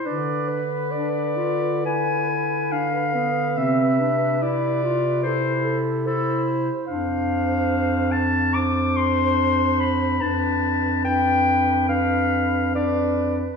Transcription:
<<
  \new Staff \with { instrumentName = "Clarinet" } { \time 4/4 \key a \minor \tempo 4 = 71 b'4 d''4 gis''4 f''4 | e''4 d''4 c''8 r8 a'8 r8 | \key g \mixolydian f''4. a''8 d'''8 c'''4 b''8 | a''4 g''4 f''4 d''8 r8 | }
  \new Staff \with { instrumentName = "Alto saxophone" } { \time 4/4 \key a \minor d''8 b'4. b'8 b'4.~ | b'2 a'8 a'8 c''4 | \key g \mixolydian c''2 c''2 | b'4 b'4 b'4 b'4 | }
  \new Staff \with { instrumentName = "Clarinet" } { \time 4/4 \key a \minor d'8 r8 d'8 f'8 e'4 d'8 b8 | c'8 d'8 e'8 f'8 e'4 e'4 | \key g \mixolydian d'2 d'2 | d'4 d'4 d'4 d'4 | }
  \new Staff \with { instrumentName = "Bass clarinet" } { \clef bass \time 4/4 \key a \minor d1 | c1 | \key g \mixolydian f,1 | f,1 | }
>>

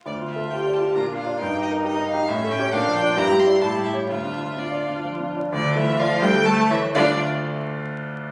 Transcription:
<<
  \new Staff \with { instrumentName = "Violin" } { \time 3/4 \key d \minor \tempo 4 = 130 d''8 e''8 g''8 a''8 bes''8 f''8 | g''8 ees''8 ees''8 f''8 e''8 g''8 | f''8 g''8 bes''8 c'''8 a''8 e''8 | e''4 d''4 r4 |
d''8 e''8 f''8 g''8 a''8 e''8 | d''8 r2 r8 | }
  \new Staff \with { instrumentName = "Viola" } { \time 3/4 \key d \minor f'2 d'4 | ees'2 cis'4 | d'4 e'4 g'4 | f'4 f'4. r8 |
f'4. a'4 r8 | f'8 r2 r8 | }
  \new Staff \with { instrumentName = "Grand piano" } { \time 3/4 \key d \minor \tuplet 3/2 { d,8 f'8 a'8 f'8 d''8 f'8 bes,8 bes8 <f' d''>8 } | \tuplet 3/2 { g,8 g'8 bes'8 g'8 ees''8 g'8 a,8 a8 <g' cis''>8 } | \tuplet 3/2 { bes,8 f8 <f' d''>8 g,8 g8 <e' d''>8 a,8 g8 <e' cis''>8 } | \tuplet 3/2 { d,8 d'8 f'8 d'8 d''8 d'8 f8 d'8 d''8 } |
d,8 a8 <f' d''>8 d,8 a8 <e' cis''>8 | <d, d a f' d'' f''>8 r2 r8 | }
  \new Staff \with { instrumentName = "Cello" } { \time 3/4 \key d \minor r4 g'4 f'4 | ees'2 cis'4 | d'4 g'4 e'4 | f'2~ f'8 r8 |
d8 e8 f8 g8 a8 e8 | d'8 r2 r8 | }
>>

